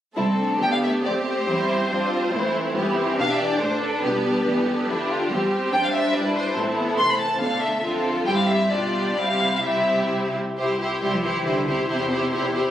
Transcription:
0.17 0.58 C2 soft
0.17 1.44 A3 soft
0.17 0.58 C4 soft
0.17 0.25 E4 soft
0.17 0.58 A4 soft
0.39 1.04 D4 soft
0.60 1.01 D2 soft
0.60 1.05 B3 soft
0.60 1.91 G4 soft
0.60 0.72 G5 soft
0.73 0.77 F5 soft
0.84 0.92 E5 soft
1.04 1.45 F2 soft
1.04 1.48 C4 soft
1.04 1.47 C4 soft
1.04 1.12 D5 soft
1.26 2.52 C5 soft
1.48 1.87 E2 soft
1.48 2.33 G3 soft
1.48 2.32 C4 soft
1.48 1.68 E4 soft
1.69 1.77 E4 soft
1.91 2.30 F2 soft
1.91 2.33 D4 soft
1.91 2.32 F4 soft
2.32 2.73 A2 soft
2.32 2.75 E3 soft
2.32 2.76 A3 soft
2.32 2.75 C4 soft
2.32 2.75 E4 soft
2.76 3.16 G2 soft
2.76 3.59 E3 soft
2.76 2.98 B3 soft
2.76 3.18 E4 soft
2.76 3.16 G4 soft
2.98 3.19 C4 soft
3.17 3.58 B2 soft
3.17 4.01 D4 soft
3.17 3.61 D4 soft
3.17 3.60 G4 soft
3.17 3.29 F5 medium
3.31 3.41 E5 soft
3.39 3.61 D5 soft
3.60 4.00 A2 soft
3.60 4.04 D3 soft
3.60 4.03 D4 soft
3.60 4.03 A4 soft
3.60 3.82 C5 soft
3.82 5.07 B4 soft
4.02 4.42 B2 soft
4.02 4.46 G3 soft
4.02 4.45 B3 soft
4.02 4.86 D4 soft
4.02 4.23 G4 soft
4.24 5.28 G4 soft
4.45 4.85 G2 soft
4.45 4.67 E3 soft
4.45 4.88 B3 soft
4.67 5.31 D3 soft
4.88 5.28 F2 soft
4.88 5.31 D4 soft
4.88 5.09 E4 soft
5.09 5.30 F4 soft
5.30 5.70 E2 medium
5.30 5.72 G3 soft
5.30 5.51 C4 soft
5.30 5.72 G4 soft
5.52 5.72 C4 soft
5.72 6.12 F2 soft
5.72 6.55 G3 soft
5.72 6.57 D4 soft
5.72 6.14 C5 soft
5.72 5.82 G5 medium
5.83 5.88 F5 medium
5.92 6.13 E5 medium
6.14 6.54 G2 soft
6.14 6.56 E4 soft
6.14 6.57 B4 soft
6.14 6.35 D5 soft
6.35 6.56 C5 soft
6.56 6.96 A2 soft
6.56 7.41 E3 soft
6.56 6.78 C4 soft
6.56 6.98 E4 soft
6.56 7.40 A4 soft
6.78 6.99 B3 soft
6.98 7.38 C3 soft
6.98 7.40 A3 soft
6.98 7.41 C4 soft
6.98 7.08 C6 medium
7.10 7.20 B5 medium
7.19 7.40 A5 medium
7.40 7.80 B2 soft
7.40 7.82 D3 soft
7.40 7.83 A3 soft
7.40 7.83 D4 soft
7.40 7.81 A4 soft
7.40 7.61 F5 soft
7.62 7.83 E5 soft
7.83 8.23 F2 soft
7.83 8.23 D3 soft
7.83 8.23 C4 soft
7.83 8.23 F4 soft
7.83 8.23 A4 soft
8.26 8.71 G2 soft
8.26 8.70 G3 soft
8.26 8.70 C4 soft
8.26 8.71 E4 soft
8.26 8.70 G4 soft
8.26 8.36 G5 medium
8.37 8.48 F5 soft
8.48 8.71 E5 soft
8.70 9.18 B2 soft
8.70 9.17 G3 soft
8.70 9.18 D4 soft
8.70 9.18 F4 soft
8.70 9.17 G4 soft
8.70 9.18 D5 soft
9.17 10.35 C3 soft
9.17 9.64 G3 soft
9.17 9.64 C4 soft
9.17 9.63 E4 soft
9.17 9.63 G4 soft
9.17 9.55 F5 soft
9.56 9.64 F5 soft
9.63 10.36 G3 soft
9.63 10.36 C4 soft
9.63 10.35 E4 soft
9.63 10.36 G4 soft
9.63 10.11 E5 soft
10.57 10.97 C2 soft
10.57 10.79 E4 soft
10.57 10.79 G4 soft
10.57 10.79 C5 soft
10.80 11.01 E4 soft
10.80 11.00 G4 soft
10.80 10.99 C5 soft
11.01 11.40 C2 soft
11.01 11.12 G3 soft
11.01 11.22 E4 soft
11.01 11.22 G4 soft
11.01 11.22 C5 soft
11.14 11.24 F3 soft
11.23 11.46 E3 soft
11.23 11.44 E4 soft
11.23 11.44 G4 soft
11.23 11.44 C5 soft
11.45 11.83 C2 soft
11.45 11.67 D3 soft
11.45 11.66 E4 soft
11.45 11.65 G4 soft
11.45 11.65 C5 soft
11.66 12.71 C3 soft
11.66 11.88 E4 soft
11.66 11.87 G4 soft
11.66 11.87 C5 soft
11.88 12.27 E2 soft
11.88 12.10 E4 soft
11.88 12.09 G4 soft
11.88 12.09 C5 soft
12.10 12.32 E4 soft
12.10 12.31 G4 soft
12.10 12.30 C5 soft
12.31 12.70 E2 soft
12.31 12.53 E4 soft
12.31 12.53 G4 soft
12.31 12.53 C5 soft
12.54 12.71 E4 soft
12.54 12.71 G4 soft
12.54 12.71 C5 soft

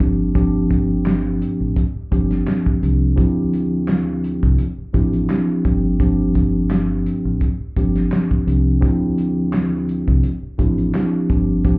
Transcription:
0.00 1.42 G1 medium
0.00 0.33 F3 medium
0.00 0.33 C4 medium
0.00 0.33 D4 medium
0.00 0.33 G4 medium
0.00 kick medium
0.00 closed hi-hat medium
0.35 1.82 F3 medium
0.35 1.82 C4 medium
0.35 1.82 D4 medium
0.35 1.82 G4 loud
0.35 kick loud
0.35 closed hi-hat medium
0.71 kick medium
0.71 closed hi-hat medium
1.06 snare loud
1.06 clap loud
1.06 closed hi-hat medium
1.42 closed hi-hat medium
1.60 1.75 A1 medium
1.76 kick medium
1.76 closed hi-hat medium
1.96 muted fingered electric bass stroke soft
2.11 2.43 G1 medium
2.11 2.77 F3 medium
2.11 2.77 C4 medium
2.11 2.77 D4 medium
2.11 2.78 G4 loud
2.11 kick medium
2.11 closed hi-hat medium
2.31 snare soft
2.31 closed hi-hat medium
2.47 snare loud
2.47 clap medium
2.47 closed hi-hat medium
2.66 kick medium
2.82 3.14 C2 medium
2.82 3.15 F3 medium
2.82 3.15 C4 medium
2.82 3.15 D4 medium
2.82 3.15 G4 medium
2.82 closed hi-hat medium
3.16 4.39 D2 loud
3.16 4.63 F3 medium
3.16 4.63 C4 medium
3.16 4.63 D4 medium
3.16 4.64 E4 medium
3.16 4.64 G4 loud
3.16 kick loud
3.16 closed hi-hat medium
3.53 closed hi-hat medium
3.88 snare loud
3.88 clap loud
3.88 closed hi-hat medium
4.24 closed hi-hat medium
4.43 4.57 C2 medium
4.43 kick medium
4.59 closed hi-hat medium
4.78 muted fingered electric bass stroke soft
4.93 5.25 A1 loud
4.93 5.26 F3 medium
4.93 5.27 C4 medium
4.93 5.27 D4 medium
4.93 5.27 E4 medium
4.93 5.27 G4 loud
4.93 kick medium
4.93 closed hi-hat medium
5.13 closed hi-hat soft
5.30 5.62 F3 medium
5.30 5.62 C4 medium
5.30 5.62 D4 medium
5.30 5.62 E4 medium
5.30 5.63 G4 medium
5.30 snare loud
5.30 clap medium
5.30 closed hi-hat medium
5.65 7.07 G1 loud
5.65 5.97 F3 medium
5.65 5.98 C4 medium
5.65 5.98 D4 medium
5.65 5.98 G4 medium
5.65 kick loud
5.65 closed hi-hat medium
6.00 7.46 F3 medium
6.00 7.47 C4 medium
6.00 7.47 D4 medium
6.00 7.47 G4 loud
6.00 kick loud
6.00 closed hi-hat medium
6.35 kick medium
6.35 closed hi-hat medium
6.71 snare loud
6.71 clap medium
6.71 closed hi-hat medium
7.06 closed hi-hat medium
7.25 7.39 A1 medium
7.41 kick medium
7.41 closed hi-hat medium
7.60 muted fingered electric bass stroke soft
7.76 8.08 G1 medium
7.76 8.42 F3 medium
7.76 8.42 C4 medium
7.76 8.42 D4 medium
7.76 8.42 G4 loud
7.76 kick medium
7.76 closed hi-hat medium
7.95 snare soft
7.95 closed hi-hat medium
8.12 snare loud
8.12 clap medium
8.12 closed hi-hat medium
8.31 kick medium
8.46 8.78 C2 medium
8.46 8.79 F3 medium
8.46 8.80 C4 medium
8.46 8.80 D4 medium
8.46 8.80 G4 medium
8.46 closed hi-hat medium
8.80 10.03 D2 loud
8.80 10.28 F3 medium
8.80 10.28 C4 medium
8.80 10.28 D4 medium
8.80 10.28 E4 medium
8.80 10.28 G4 loud
8.80 kick loud
8.80 closed hi-hat medium
9.18 closed hi-hat medium
9.53 snare loud
9.53 clap medium
9.53 closed hi-hat medium
9.89 closed hi-hat medium
10.08 10.22 C2 medium
10.08 kick loud
10.23 closed hi-hat medium
10.43 muted fingered electric bass stroke soft
10.58 10.90 A1 medium
10.58 10.91 F3 medium
10.58 10.91 C4 medium
10.58 10.91 D4 medium
10.58 10.92 E4 medium
10.58 10.92 G4 medium
10.58 kick medium
10.58 closed hi-hat medium
10.78 closed hi-hat medium
10.94 11.27 F3 medium
10.94 11.27 C4 medium
10.94 11.27 D4 medium
10.94 11.27 E4 medium
10.94 11.28 G4 medium
10.94 snare loud
10.94 clap medium
10.94 closed hi-hat medium
11.30 11.78 G1 loud
11.30 11.62 F3 medium
11.30 11.62 C4 medium
11.30 11.63 D4 medium
11.30 11.63 G4 medium
11.30 kick loud
11.30 closed hi-hat medium
11.64 11.78 F3 medium
11.64 11.78 C4 medium
11.64 11.78 D4 medium
11.64 11.78 G4 loud
11.64 kick loud
11.64 closed hi-hat medium

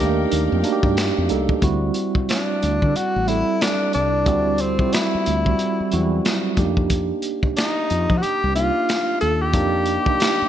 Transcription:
0.00 0.24 D#2 medium
0.00 0.93 G3 medium
0.00 1.58 G3 medium
0.00 1.65 A3 loud
0.00 0.04 A#3 loud
0.00 0.97 A#3 medium
0.00 0.64 D4 loud
0.00 0.65 D#4 loud
0.00 0.93 D#4 medium
0.00 0.72 G4 loud
0.00 0.93 A#4 medium
0.00 1.59 F5 medium
0.00 1.58 G5 medium
0.04 0.62 A#3 medium
0.31 0.48 D#2 medium
0.31 closed hi-hat medium
0.52 0.62 F2 medium
0.63 1.25 A#3 medium
0.63 1.25 D4 medium
0.63 1.26 D#4 medium
0.63 0.73 F#4 medium
0.63 closed hi-hat medium
0.72 1.29 G4 loud
0.83 1.11 G2 medium
0.83 kick medium
0.97 finger snap medium
0.97 snare medium
0.97 closed hi-hat medium
1.18 1.28 F2 medium
1.29 1.57 C2 medium
1.29 1.60 A#3 medium
1.29 1.60 D4 medium
1.29 1.61 D#4 medium
1.29 1.61 A4 medium
1.29 closed hi-hat medium
1.49 kick medium
1.62 1.90 D2 medium
1.62 2.85 G3 loud
1.62 2.86 C4 medium
1.62 2.86 E4 medium
1.62 2.86 F#4 loud
1.62 kick loud
1.62 closed hi-hat medium
1.94 closed hi-hat medium
2.15 kick medium
2.29 2.97 D4 medium
2.29 finger snap medium
2.29 snare loud
2.29 closed hi-hat medium
2.62 2.79 D2 medium
2.62 closed hi-hat medium
2.82 2.93 D3 medium
2.82 kick medium
2.96 3.29 F#4 medium
2.96 muted fretless electric bass stroke soft
2.96 closed hi-hat medium
3.16 3.42 A1 medium
3.27 4.19 G3 medium
3.27 4.20 C4 medium
3.27 3.63 E4 medium
3.27 4.20 E4 medium
3.27 4.21 A4 medium
3.27 closed hi-hat medium
3.61 3.93 D4 medium
3.61 finger snap medium
3.61 snare medium
3.61 closed hi-hat medium
3.93 4.27 C2 medium
3.93 4.62 D4 loud
3.93 closed hi-hat medium
4.26 4.80 D2 loud
4.26 4.74 G3 medium
4.26 4.74 C4 medium
4.26 4.75 E4 medium
4.26 4.75 F#4 loud
4.26 kick loud
4.26 closed hi-hat medium
4.58 4.95 C4 medium
4.58 closed hi-hat medium
4.79 5.39 G3 medium
4.79 5.39 C4 medium
4.79 5.39 E4 medium
4.79 4.86 F4 medium
4.79 kick medium
4.88 5.43 F#4 medium
4.93 6.25 E4 medium
4.93 finger snap medium
4.93 snare loud
4.93 closed hi-hat medium
5.15 muted fretless electric bass stroke soft
5.26 5.53 D2 medium
5.26 closed hi-hat medium
5.45 5.88 G3 medium
5.45 5.88 C4 medium
5.45 5.89 E4 medium
5.45 5.89 F#4 medium
5.45 kick medium
5.59 closed hi-hat medium
5.80 muted fretless electric bass stroke soft
5.91 6.19 E2 medium
5.91 5.99 F#3 medium
5.91 6.57 C4 medium
5.91 6.58 E4 medium
5.91 6.58 F#4 medium
5.91 closed hi-hat medium
5.98 6.60 G3 medium
6.25 finger snap medium
6.25 snare medium
6.25 closed hi-hat medium
6.56 7.11 F2 medium
6.56 6.65 A3 medium
6.56 7.80 D4 medium
6.56 7.80 D#4 medium
6.56 7.81 G4 loud
6.56 kick medium
6.56 closed hi-hat medium
6.63 7.83 A#3 medium
6.77 kick medium
6.90 kick medium
6.90 closed hi-hat medium
7.22 closed hi-hat medium
7.43 kick medium
7.57 8.18 D#4 medium
7.57 finger snap medium
7.57 snare loud
7.57 closed hi-hat medium
7.90 8.06 F2 medium
7.90 closed hi-hat medium
8.10 8.21 F3 medium
8.10 kick medium
8.17 8.23 F#4 medium
8.22 8.55 G4 loud
8.22 muted fretless electric bass stroke soft
8.22 closed hi-hat medium
8.44 8.70 C2 medium
8.55 9.47 A#3 medium
8.55 9.48 D4 medium
8.55 9.48 D#4 medium
8.55 9.17 F4 medium
8.55 9.48 F4 medium
8.55 closed hi-hat medium
8.89 finger snap medium
8.89 snare medium
8.89 closed hi-hat medium
9.20 9.54 D#2 medium
9.20 9.43 A4 loud
9.20 closed hi-hat medium
9.42 10.49 G4 medium
9.53 9.97 F2 medium
9.53 10.02 A#3 loud
9.53 10.02 D4 medium
9.53 10.02 D#4 medium
9.53 10.03 G4 loud
9.53 kick loud
9.53 closed hi-hat medium
9.86 closed hi-hat medium
10.06 10.49 A#3 medium
10.06 10.49 D4 medium
10.06 10.49 D#4 medium
10.06 10.49 G4 medium
10.06 muted fretless electric bass stroke soft
10.06 kick medium
10.20 finger snap medium
10.20 snare loud
10.20 closed hi-hat medium
10.42 muted fretless electric bass stroke soft

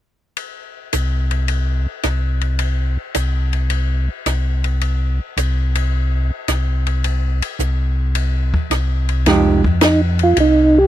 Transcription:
0.37 ride soft
0.93 1.87 C2 medium
0.93 hi-hat pedal medium
0.93 ride medium
1.31 ride soft
1.48 ride soft
2.03 2.97 C2 medium
2.03 cross-stick soft
2.03 hi-hat pedal soft
2.03 ride soft
2.41 ride soft
2.59 ride soft
3.15 4.09 C2 medium
3.15 hi-hat pedal medium
3.15 ride medium
3.53 ride soft
3.70 ride soft
4.26 5.20 C2 medium
4.26 cross-stick soft
4.26 hi-hat pedal soft
4.26 ride soft
4.64 ride soft
4.81 ride soft
5.37 6.31 C2 medium
5.37 hi-hat pedal medium
5.37 ride soft
5.75 ride medium
6.48 7.42 C2 medium
6.48 cross-stick soft
6.48 hi-hat pedal soft
6.48 ride soft
6.87 ride soft
7.04 ride soft
7.42 ride medium
7.59 8.53 C2 medium
7.59 hi-hat pedal medium
8.15 ride medium
8.54 kick soft
8.70 9.64 C2 medium
8.70 cross-stick soft
8.70 hi-hat pedal soft
8.70 ride soft
9.09 ride soft
9.26 10.34 F2 medium
9.26 9.61 F3 medium
9.26 9.62 G#3 medium
9.26 9.62 D#4 medium
9.26 9.62 G4 medium
9.26 snare soft
9.26 ride medium
9.64 kick medium
9.81 10.01 D#4 medium
9.81 snare medium
9.81 hi-hat pedal medium
9.81 ride medium
10.19 ride soft
10.23 10.38 F4 medium
10.37 10.87 C2 medium
10.37 10.79 D#4 medium
10.37 ride medium
10.78 10.87 G4 loud

